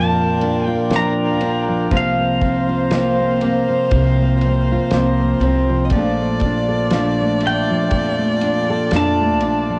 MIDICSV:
0, 0, Header, 1, 8, 480
1, 0, Start_track
1, 0, Key_signature, -2, "major"
1, 0, Tempo, 1001669
1, 917, Time_signature, 4, 2, 24, 8
1, 4692, End_track
2, 0, Start_track
2, 0, Title_t, "Pedal steel guitar"
2, 0, Program_c, 0, 26
2, 0, Note_on_c, 0, 81, 98
2, 317, Note_off_c, 0, 81, 0
2, 317, Note_on_c, 0, 79, 98
2, 458, Note_off_c, 0, 79, 0
2, 460, Note_on_c, 0, 82, 101
2, 943, Note_off_c, 0, 82, 0
2, 943, Note_on_c, 0, 77, 87
2, 2351, Note_off_c, 0, 77, 0
2, 3579, Note_on_c, 0, 79, 85
2, 4293, Note_off_c, 0, 79, 0
2, 4295, Note_on_c, 0, 81, 88
2, 4692, Note_off_c, 0, 81, 0
2, 4692, End_track
3, 0, Start_track
3, 0, Title_t, "Harmonium"
3, 0, Program_c, 1, 20
3, 0, Note_on_c, 1, 65, 59
3, 0, Note_on_c, 1, 74, 50
3, 0, Note_on_c, 1, 79, 80
3, 903, Note_off_c, 1, 74, 0
3, 910, Note_off_c, 1, 79, 0
3, 910, Note_on_c, 1, 82, 64
3, 916, Note_on_c, 1, 72, 57
3, 2814, Note_off_c, 1, 82, 0
3, 2817, Note_off_c, 1, 72, 0
3, 2836, Note_on_c, 1, 74, 57
3, 2839, Note_on_c, 1, 81, 69
3, 4692, Note_off_c, 1, 65, 0
3, 4692, Note_off_c, 1, 74, 0
3, 4692, Note_off_c, 1, 81, 0
3, 4692, End_track
4, 0, Start_track
4, 0, Title_t, "Violin"
4, 0, Program_c, 2, 40
4, 0, Note_on_c, 2, 70, 92
4, 917, Note_on_c, 2, 72, 108
4, 924, Note_off_c, 2, 70, 0
4, 2801, Note_on_c, 2, 75, 80
4, 2808, Note_off_c, 2, 72, 0
4, 2830, Note_on_c, 2, 74, 123
4, 2837, Note_off_c, 2, 75, 0
4, 4692, Note_off_c, 2, 74, 0
4, 4692, End_track
5, 0, Start_track
5, 0, Title_t, "Nylon-string guitar"
5, 0, Program_c, 3, 24
5, 0, Note_on_c, 3, 46, 70
5, 0, Note_on_c, 3, 53, 58
5, 0, Note_on_c, 3, 62, 51
5, 0, Note_on_c, 3, 65, 64
5, 198, Note_off_c, 3, 62, 0
5, 203, Note_on_c, 3, 62, 56
5, 322, Note_off_c, 3, 65, 0
5, 324, Note_on_c, 3, 65, 67
5, 435, Note_off_c, 3, 62, 0
5, 441, Note_on_c, 3, 62, 61
5, 676, Note_off_c, 3, 62, 0
5, 682, Note_on_c, 3, 62, 56
5, 806, Note_off_c, 3, 53, 0
5, 808, Note_on_c, 3, 53, 61
5, 891, Note_off_c, 3, 62, 0
5, 914, Note_off_c, 3, 46, 0
5, 916, Note_on_c, 3, 48, 75
5, 921, Note_on_c, 3, 58, 55
5, 922, Note_off_c, 3, 53, 0
5, 924, Note_on_c, 3, 53, 57
5, 927, Note_on_c, 3, 60, 56
5, 931, Note_off_c, 3, 65, 0
5, 933, Note_on_c, 3, 65, 68
5, 1045, Note_off_c, 3, 58, 0
5, 1047, Note_on_c, 3, 58, 53
5, 1163, Note_off_c, 3, 60, 0
5, 1172, Note_on_c, 3, 60, 54
5, 1288, Note_off_c, 3, 65, 0
5, 1290, Note_on_c, 3, 65, 65
5, 1403, Note_off_c, 3, 60, 0
5, 1409, Note_on_c, 3, 60, 56
5, 1532, Note_off_c, 3, 58, 0
5, 1534, Note_on_c, 3, 58, 55
5, 1643, Note_off_c, 3, 60, 0
5, 1651, Note_on_c, 3, 60, 59
5, 1764, Note_off_c, 3, 53, 0
5, 1766, Note_on_c, 3, 53, 59
5, 1877, Note_off_c, 3, 48, 0
5, 1893, Note_on_c, 3, 48, 72
5, 2018, Note_off_c, 3, 58, 0
5, 2020, Note_on_c, 3, 58, 55
5, 2125, Note_off_c, 3, 60, 0
5, 2143, Note_on_c, 3, 60, 61
5, 2261, Note_off_c, 3, 65, 0
5, 2263, Note_on_c, 3, 65, 68
5, 2370, Note_off_c, 3, 60, 0
5, 2378, Note_on_c, 3, 60, 63
5, 2494, Note_off_c, 3, 58, 0
5, 2496, Note_on_c, 3, 58, 58
5, 2607, Note_off_c, 3, 60, 0
5, 2621, Note_on_c, 3, 60, 54
5, 2725, Note_off_c, 3, 48, 0
5, 2727, Note_off_c, 3, 53, 0
5, 2728, Note_on_c, 3, 53, 58
5, 2847, Note_on_c, 3, 46, 70
5, 2848, Note_off_c, 3, 53, 0
5, 2849, Note_off_c, 3, 60, 0
5, 2850, Note_off_c, 3, 58, 0
5, 2850, Note_on_c, 3, 53, 63
5, 2852, Note_on_c, 3, 57, 64
5, 2857, Note_on_c, 3, 62, 59
5, 2862, Note_off_c, 3, 65, 0
5, 2864, Note_on_c, 3, 69, 66
5, 2964, Note_off_c, 3, 57, 0
5, 2971, Note_on_c, 3, 57, 54
5, 3087, Note_off_c, 3, 62, 0
5, 3094, Note_on_c, 3, 62, 62
5, 3199, Note_off_c, 3, 69, 0
5, 3205, Note_on_c, 3, 69, 60
5, 3324, Note_off_c, 3, 62, 0
5, 3337, Note_on_c, 3, 62, 56
5, 3442, Note_off_c, 3, 57, 0
5, 3455, Note_on_c, 3, 57, 62
5, 3565, Note_off_c, 3, 62, 0
5, 3575, Note_on_c, 3, 62, 59
5, 3691, Note_off_c, 3, 53, 0
5, 3693, Note_on_c, 3, 53, 57
5, 3803, Note_off_c, 3, 46, 0
5, 3805, Note_on_c, 3, 46, 73
5, 3917, Note_off_c, 3, 57, 0
5, 3922, Note_on_c, 3, 57, 53
5, 4033, Note_off_c, 3, 62, 0
5, 4039, Note_on_c, 3, 62, 62
5, 4158, Note_off_c, 3, 69, 0
5, 4168, Note_on_c, 3, 69, 73
5, 4277, Note_off_c, 3, 62, 0
5, 4291, Note_on_c, 3, 62, 64
5, 4399, Note_off_c, 3, 57, 0
5, 4413, Note_on_c, 3, 57, 60
5, 4522, Note_off_c, 3, 62, 0
5, 4527, Note_on_c, 3, 62, 53
5, 4644, Note_off_c, 3, 53, 0
5, 4646, Note_on_c, 3, 53, 64
5, 4692, Note_off_c, 3, 46, 0
5, 4692, Note_off_c, 3, 53, 0
5, 4692, Note_off_c, 3, 57, 0
5, 4692, Note_off_c, 3, 62, 0
5, 4692, Note_off_c, 3, 69, 0
5, 4692, End_track
6, 0, Start_track
6, 0, Title_t, "Steel-string acoustic guitar"
6, 0, Program_c, 4, 25
6, 0, Note_on_c, 4, 53, 57
6, 0, Note_on_c, 4, 62, 59
6, 437, Note_off_c, 4, 53, 0
6, 438, Note_off_c, 4, 62, 0
6, 439, Note_on_c, 4, 53, 60
6, 445, Note_on_c, 4, 62, 67
6, 671, Note_off_c, 4, 62, 0
6, 676, Note_on_c, 4, 62, 68
6, 914, Note_off_c, 4, 53, 0
6, 916, Note_on_c, 4, 53, 87
6, 965, Note_off_c, 4, 62, 0
6, 1397, Note_off_c, 4, 53, 0
6, 1399, Note_on_c, 4, 53, 59
6, 1403, Note_on_c, 4, 58, 56
6, 1406, Note_on_c, 4, 60, 55
6, 1636, Note_off_c, 4, 58, 0
6, 1638, Note_on_c, 4, 58, 53
6, 2357, Note_off_c, 4, 53, 0
6, 2359, Note_on_c, 4, 53, 60
6, 2360, Note_off_c, 4, 58, 0
6, 2360, Note_off_c, 4, 60, 0
6, 2362, Note_on_c, 4, 58, 58
6, 2366, Note_on_c, 4, 60, 66
6, 2594, Note_off_c, 4, 60, 0
6, 2600, Note_on_c, 4, 60, 68
6, 2836, Note_off_c, 4, 53, 0
6, 2838, Note_on_c, 4, 53, 84
6, 2886, Note_off_c, 4, 60, 0
6, 3314, Note_off_c, 4, 53, 0
6, 3316, Note_on_c, 4, 53, 57
6, 3318, Note_off_c, 4, 58, 0
6, 3320, Note_on_c, 4, 57, 55
6, 3324, Note_on_c, 4, 62, 64
6, 3553, Note_off_c, 4, 57, 0
6, 3559, Note_on_c, 4, 57, 58
6, 4273, Note_off_c, 4, 57, 0
6, 4275, Note_off_c, 4, 53, 0
6, 4277, Note_off_c, 4, 62, 0
6, 4277, Note_on_c, 4, 53, 57
6, 4280, Note_on_c, 4, 57, 46
6, 4283, Note_on_c, 4, 62, 63
6, 4509, Note_off_c, 4, 62, 0
6, 4515, Note_on_c, 4, 62, 68
6, 4692, Note_off_c, 4, 53, 0
6, 4692, Note_off_c, 4, 57, 0
6, 4692, Note_off_c, 4, 62, 0
6, 4692, End_track
7, 0, Start_track
7, 0, Title_t, "Upright bass"
7, 0, Program_c, 5, 32
7, 0, Note_on_c, 5, 41, 97
7, 361, Note_off_c, 5, 41, 0
7, 431, Note_on_c, 5, 41, 81
7, 672, Note_off_c, 5, 41, 0
7, 672, Note_on_c, 5, 34, 103
7, 917, Note_off_c, 5, 34, 0
7, 917, Note_on_c, 5, 36, 85
7, 1729, Note_off_c, 5, 36, 0
7, 1876, Note_on_c, 5, 36, 110
7, 2282, Note_off_c, 5, 36, 0
7, 2353, Note_on_c, 5, 36, 92
7, 2557, Note_off_c, 5, 36, 0
7, 2588, Note_on_c, 5, 36, 98
7, 2833, Note_off_c, 5, 36, 0
7, 2833, Note_on_c, 5, 34, 94
7, 3644, Note_off_c, 5, 34, 0
7, 3791, Note_on_c, 5, 41, 97
7, 4198, Note_off_c, 5, 41, 0
7, 4271, Note_on_c, 5, 41, 84
7, 4512, Note_off_c, 5, 41, 0
7, 4512, Note_on_c, 5, 34, 100
7, 4692, Note_off_c, 5, 34, 0
7, 4692, End_track
8, 0, Start_track
8, 0, Title_t, "Drums"
8, 197, Note_on_c, 9, 51, 47
8, 245, Note_off_c, 9, 51, 0
8, 433, Note_on_c, 9, 51, 62
8, 437, Note_on_c, 9, 38, 84
8, 481, Note_off_c, 9, 51, 0
8, 485, Note_off_c, 9, 38, 0
8, 674, Note_on_c, 9, 51, 50
8, 721, Note_off_c, 9, 51, 0
8, 916, Note_on_c, 9, 51, 64
8, 917, Note_on_c, 9, 36, 89
8, 964, Note_off_c, 9, 51, 0
8, 965, Note_off_c, 9, 36, 0
8, 1157, Note_on_c, 9, 51, 50
8, 1158, Note_on_c, 9, 36, 65
8, 1204, Note_off_c, 9, 51, 0
8, 1206, Note_off_c, 9, 36, 0
8, 1393, Note_on_c, 9, 51, 67
8, 1397, Note_on_c, 9, 38, 94
8, 1441, Note_off_c, 9, 51, 0
8, 1445, Note_off_c, 9, 38, 0
8, 1634, Note_on_c, 9, 51, 51
8, 1682, Note_off_c, 9, 51, 0
8, 1874, Note_on_c, 9, 51, 66
8, 1877, Note_on_c, 9, 36, 66
8, 1922, Note_off_c, 9, 51, 0
8, 1925, Note_off_c, 9, 36, 0
8, 2114, Note_on_c, 9, 51, 44
8, 2162, Note_off_c, 9, 51, 0
8, 2351, Note_on_c, 9, 51, 61
8, 2355, Note_on_c, 9, 38, 82
8, 2399, Note_off_c, 9, 51, 0
8, 2403, Note_off_c, 9, 38, 0
8, 2592, Note_on_c, 9, 51, 47
8, 2640, Note_off_c, 9, 51, 0
8, 2827, Note_on_c, 9, 51, 64
8, 2834, Note_on_c, 9, 36, 89
8, 2875, Note_off_c, 9, 51, 0
8, 2882, Note_off_c, 9, 36, 0
8, 3066, Note_on_c, 9, 51, 47
8, 3074, Note_on_c, 9, 36, 62
8, 3114, Note_off_c, 9, 51, 0
8, 3121, Note_off_c, 9, 36, 0
8, 3309, Note_on_c, 9, 51, 70
8, 3313, Note_on_c, 9, 38, 89
8, 3357, Note_off_c, 9, 51, 0
8, 3361, Note_off_c, 9, 38, 0
8, 3548, Note_on_c, 9, 51, 52
8, 3596, Note_off_c, 9, 51, 0
8, 3789, Note_on_c, 9, 51, 71
8, 3792, Note_on_c, 9, 36, 70
8, 3837, Note_off_c, 9, 51, 0
8, 3840, Note_off_c, 9, 36, 0
8, 4031, Note_on_c, 9, 51, 55
8, 4079, Note_off_c, 9, 51, 0
8, 4269, Note_on_c, 9, 51, 67
8, 4273, Note_on_c, 9, 38, 85
8, 4317, Note_off_c, 9, 51, 0
8, 4321, Note_off_c, 9, 38, 0
8, 4507, Note_on_c, 9, 51, 50
8, 4555, Note_off_c, 9, 51, 0
8, 4692, End_track
0, 0, End_of_file